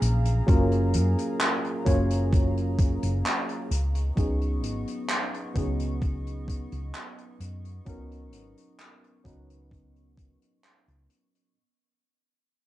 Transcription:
Already playing: F#3 A#3 C#4 F4 G#4 F5 A#5
0.02 A#1, closed hi-hat
0.25 closed hi-hat
0.46 F#1 F#3 A#3 C#4 F4 A#4, kick, closed hi-hat
0.72 closed hi-hat
0.94 F#2, closed hi-hat
1.19 closed hi-hat
1.40 clap, closed hi-hat
1.65 closed hi-hat
1.85 F#1 F#3 A#3 C#4 F4 C#5, kick, closed hi-hat
2.10 closed hi-hat
2.33 kick, closed hi-hat
2.57 closed hi-hat
2.79 kick, closed hi-hat
3.03 F#1, closed hi-hat
3.26 clap, closed hi-hat
3.49 closed hi-hat
3.71 C#2 B3 D#5 C#6, closed hi-hat
3.95 closed hi-hat
4.16 C#2 F#3 B3 C#4 D#4 G#4, kick, closed hi-hat
4.41 closed hi-hat
4.63 G#1, closed hi-hat
4.87 closed hi-hat
5.09 clap, closed hi-hat
5.34 closed hi-hat
5.54 C#2 F#3 B3 C#4 D#4 G#4, kick, closed hi-hat
5.79 closed hi-hat
6.02 kick, closed hi-hat
6.27 closed hi-hat
6.48 kick, closed hi-hat
6.72 C#2, closed hi-hat
6.94 clap, closed hi-hat
7.18 closed hi-hat
7.40 F#2, closed hi-hat
7.65 closed hi-hat
7.85 C#2 F#3 B3 C#4 D#4 A#4, kick, closed hi-hat
8.11 closed hi-hat
8.32 G#1, closed hi-hat
8.57 closed hi-hat
8.79 clap, closed hi-hat
9.04 closed hi-hat
9.24 C#2 F#3 B3 C#4 D#4 B4, kick, closed hi-hat
9.50 closed hi-hat
9.71 kick, closed hi-hat
9.96 closed hi-hat
10.18 kick, closed hi-hat
10.42 closed hi-hat
10.64 clap
10.88 C#2, closed hi-hat
11.10 closed hi-hat
11.35 closed hi-hat

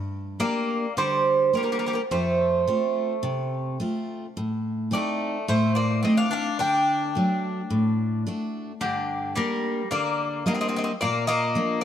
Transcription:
Already playing: G2
0.40 A#3 D4 G4 D5
0.97 D3 G3 C5
1.53 G3 A#3 D4 G4 A#4
1.63 G3 A#4
1.72 G3 A#4
1.79 G3 A#4
1.86 G3 A#4
1.93 G3 A#4
2.11 F2 A3 C5
2.67 A3 C4 F4
3.23 C3
3.80 A3 C4 F4
4.37 A2
4.91 A3 C4 D#4 D5
5.48 A2 A3 C5
5.75 A#3 D5
6.03 A3 C4 D#4 D#5
6.17 D4 F5
6.31 D4 F5
6.59 D3 D4 G5
7.15 F#3 A3 D4
7.70 A2
8.27 A3 D4 F#4
8.81 G2 D3 G4
9.36 G3 A#3 D4 A#4
9.91 D3 A#3 D5
10.46 G3 A#3 D4 D#5
10.54 C4 D#5
10.61 C4 D#5
10.68 C4 D#5
10.76 C4 D#5
10.84 C4 D#5
11.01 A#2 A#3 D5
11.27 A#3 D#5
11.55 F3 A#3 D4

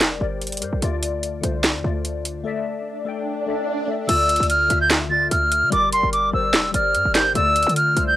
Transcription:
Already playing: G3 G4 A#4 C5 D5
0.01 F1, snare, clap, closed hi-hat
0.19 G1 G3 G4 A#4 D5
0.42 closed hi-hat
0.47 closed hi-hat
0.52 closed hi-hat
0.57 G3, closed hi-hat
0.62 G2 G4 A#4 C5, closed hi-hat
0.73 A#1
0.81 D2 D3 A3 F4 D5, closed hi-hat, swell
1.03 closed hi-hat
1.23 closed hi-hat
1.41 C2 D3 A3 F4 C5, closed hi-hat
1.64 snare, clap, closed hi-hat
1.75 E2
1.83 D2 D3 A3 F4 D5
2.05 closed hi-hat
2.25 closed hi-hat
2.44 A3 A4 D5 E5
3.05 A3 A4 D5 G5
3.46 A3 A4 D5 E5
3.87 A3 A4 D5 E5
4.07 D2 D3 A3 F4 D5 E6, closed hi-hat, crash
4.29 closed hi-hat
4.36 D2, closed hi-hat
4.43 closed hi-hat
4.50 F6, closed hi-hat
4.68 D2 D3 A3 F4 E5, closed hi-hat
4.81 G6
4.90 snare, clap, closed hi-hat
5.09 D3 A3 F4 D5 A6
5.31 D2 F6, closed hi-hat
5.52 closed hi-hat
5.63 D3
5.70 G1 G3 G4 A#4 D5 D6, closed hi-hat
5.93 F1 C6, closed hi-hat
6.03 G1
6.13 D6, closed hi-hat
6.32 G1 G3 G4 A#4 C5 E6
6.54 F1, snare, clap, closed hi-hat
6.72 G1 G3 G4 A#4 D5 F6, closed hi-hat
6.95 G2, closed hi-hat
7.05 G1
7.13 G3 G4 A#4 C5 G6, snare, clap, closed hi-hat
7.34 D2 D3 A3 F4 D5 E6, closed hi-hat
7.56 closed hi-hat
7.63 closed hi-hat
7.67 D3, closed hi-hat
7.76 F6, closed hi-hat
7.94 C2 D3 A3 F4 C5, closed hi-hat
8.07 G6

